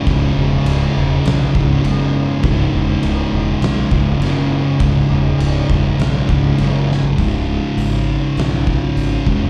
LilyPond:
<<
  \new Staff \with { instrumentName = "Distorted electric guitar" } { \clef bass \time 4/4 \key cis \minor \tempo 4 = 101 <cis, gis, cis>2~ <cis, gis, cis>8 <cis, gis, cis>8 <cis, gis, cis>4 | <cis, gis, cis>2~ <cis, gis, cis>8 <cis, gis, cis>8 <cis, gis, cis>4 | <cis, gis, cis>2~ <cis, gis, cis>8 <cis, gis, cis>8 <cis, gis, cis>4 | <cis, gis, cis>2.~ <cis, gis, cis>8 <cis, gis, cis>8 | }
  \new Staff \with { instrumentName = "Distorted electric guitar" } { \clef bass \time 4/4 \key cis \minor <cis, gis, cis>1 | <cis, gis, cis>1 | <cis, gis, cis>1 | <cis, gis, cis>2.~ <cis, gis, cis>8 <cis, gis, cis>8 | }
  \new Staff \with { instrumentName = "Fingered electric bass" } { \clef bass \time 4/4 \key cis \minor cis,,8 e,,8 cis,,8 e,,8 b,,8 cis,,8 fis,,4 | cis,,8 e,,8 cis,,8 e,,8 b,,8 cis,,8 fis,,4 | cis,,8 e,,8 cis,,8 e,,8 b,,8 cis,,8 fis,,4 | cis,,4 gis,,4 b,,4 gis,,8 e,,8 | }
  \new DrumStaff \with { instrumentName = "Drums" } \drummode { \time 4/4 <cymc bd>4 cymc4 <cymc sn>8 bd8 cymc4 | <cymc bd>4 cymc4 <cymc sn>8 bd8 <cymc sn>4 | <cymc bd>4 cymc8 bd8 <cymc sn>8 bd8 cymc8 sn16 tomfh16 | <hho bd>4 hho4 <hho sn>8 bd8 hho8 bd8 | }
>>